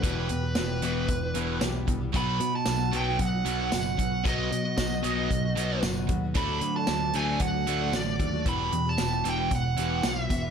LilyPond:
<<
  \new Staff \with { instrumentName = "Lead electric guitar" } { \time 4/4 \key e \minor \tempo 4 = 114 b'2. r4 | b''8. a''8. g''8 fis''4 fis''4 | dis''2. r4 | b''8. a''8. gis''8 fis''4 d''4 |
b''8. a''8. g''8 fis''4 e''4 | }
  \new Staff \with { instrumentName = "Twelve-string acoustic guitar" } { \time 4/4 \key e \minor <e, b, e g b g'>8. <e g b g'>16 <e, b, e g b g'>8 <e g b g'>8. <e g b g'>16 <e g b g'>8 <e, b, e g b g'>8. <e g b g'>16 | <b, fis b dis' fis'>8. <b dis' fis'>16 <b, fis b dis' fis'>8 <fis b dis' fis'>16 <b dis' fis'>8 <b dis' fis'>16 <fis b dis' fis'>16 <b dis' fis'>16 <b, fis b dis' fis'>8. <b dis' fis'>16 | <b, fis b dis' fis'>8. <b dis' fis'>16 <b, fis b dis' fis'>8 <fis b dis' fis'>16 <b dis' fis'>8 <b dis' fis'>16 <fis b dis' fis'>16 <b dis' fis'>16 <b, fis b dis' fis'>8. <b dis' fis'>16 | <d a d' fis'>8. <a d' fis'>16 <d a d' fis'>8 <d a d' fis'>16 <a d' fis'>8 <a d' fis'>16 <d a d' fis'>16 <a d' fis'>16 <d a d' fis'>8. <a d' fis'>16 |
<e, b, e g b g'>8. <e g b g'>16 <e, b, e g b g'>8 <e g b g'>16 <e g b g'>8 <e g b g'>16 <e g b g'>8 <e, b, e g b g'>8. <e g b g'>16 | }
  \new Staff \with { instrumentName = "Overdriven electric guitar" } { \clef bass \time 4/4 \key e \minor <e, b, e>8 <e, b,>8 <e, b,>8 <e, b, e>8 <e, b,>8 <e, b, e>8 <e, b,>8 <e, b,>8 | <b, fis b>8 <b, fis>8 <b, fis>8 <b, fis b>8 <b, fis>8 <b, fis b>8 <b, fis>8 <b, fis>8 | <b, fis b>8 <b, fis>8 <b, fis>8 <b, fis b>8 <b, fis>8 <b, fis b>8 <b, fis>8 <b, fis>8 | <d fis a>8 <d fis>8 <d fis>8 <d fis a>8 <d fis>8 <d fis a>8 <d fis>8 <d fis>8 |
<e, b, e>8 <e, b,>8 <e, b,>8 <e, b, e>8 <e, b,>8 <e, b, e>8 <e, b,>8 <e, b,>8 | }
  \new Staff \with { instrumentName = "Overdriven electric guitar" } { \clef bass \time 4/4 \key e \minor <e, b, e>8 <e, b,>8 <e, b,>8 <e, b, e>8 <e, b,>8 <e, b, e>8 <e, b,>8 <e, b,>8 | <b, fis b>8 <b, fis>8 <b, fis>8 <b, fis b>8 <b, fis>8 <b, fis b>8 <b, fis>8 <b, fis>8 | <b, fis b>8 <b, fis>8 <b, fis>8 <b, fis b>8 <b, fis>8 <b, fis b>8 <b, fis>8 <b, fis>8 | <d a d'>8 <d a>8 <d a>8 <d a d'>8 <d a>8 <d a d'>8 <d a>8 <d a>8 |
<e, b, e>8 <e, b,>8 <e, b,>8 <e, b, e>8 <e, b,>8 <e, b, e>8 <e, b,>8 <e, b,>8 | }
  \new Staff \with { instrumentName = "Picked electric bass" } { \clef bass \time 4/4 \key e \minor e,,8 e,8 e,,8 e,,8 e,,8 e,,8 b,,8 c,8 | b,,8 b,8 b,,8 b,,8 b,,8 b,,8 fis,,8 b,,8 | b,,8 b,8 b,,8 b,,8 b,,8 b,,8 fis,,8 dis,8 | d,8 d8 d,8 d,8 d,8 d,8 a,,8 dis,8 |
e,,8 e,8 e,,8 e,,8 e,,8 e,,8 b,,8 e,,8 | }
  \new DrumStaff \with { instrumentName = "Drums" } \drummode { \time 4/4 <hh bd>8 hh8 <hh sn tamb>8 hh8 <hh bd>8 hh8 <hh sn tamb>8 <hh bd>8 | <hh bd>8 hh8 <hh sn tamb>8 hh8 <hh bd>8 hh8 <hh sn tamb>8 <hh bd>8 | <hh bd>8 hh8 <hh bd sn tamb>8 hh8 <hh bd>8 hh8 <hh sn tamb>8 <hh bd>8 | <hh bd>8 hh8 <hh sn tamb>8 hh8 <hh bd>8 hh8 <hh sn tamb>8 <hh bd>8 |
<hh bd>8 hh8 <hh sn tamb>8 hh8 <hh bd>8 hh8 <hh sn tamb>8 <hh bd>8 | }
>>